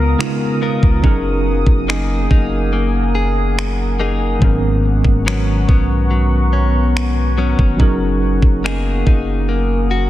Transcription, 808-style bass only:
Already playing: C#2
0.83 C#2
1.04 F#1
1.67 F#1
2.31 F#1
4.42 G#1
5.05 G#1
5.69 B1
7.59 G#1
7.80 F#1
8.43 F#1
9.07 F#1

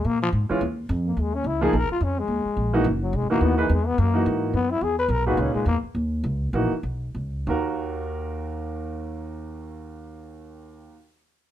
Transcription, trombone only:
0.06 A#3
0.22 F3
1.07 A#3
1.21 G#3
1.34 C#4
1.47 E4
1.64 G#4
1.76 A#4
1.92 F4
2.03 C#4
2.19 G#3
3.02 F#3
3.15 G#3
3.31 A#3
3.43 B3
3.58 E3
3.72 G#3
3.87 B3
3.99 A#3
4.55 B3
4.71 E4
4.83 G#4
4.99 B4
5.11 A#4
5.27 F#4
5.40 C#4
5.54 G#3
5.68 A#3

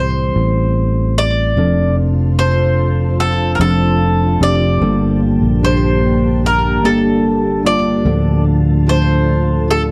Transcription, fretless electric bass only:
Already playing: C2
0.36 A1
1.57 F1
3.60 F1
4.41 F1
4.81 G1
5.42 A#1
6.84 G1
8.05 D2

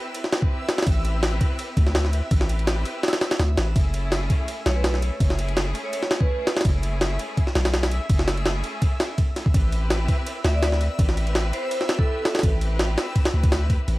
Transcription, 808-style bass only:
0.87 A1
1.77 D2
2.31 A1
3.40 D2
3.58 A1
3.76 F#1
4.66 B1
5.20 F#1
6.65 F#1
7.55 B1
8.10 F#1
9.54 A1
10.45 D2
10.99 A1
12.43 A1
13.34 D2
13.88 A1

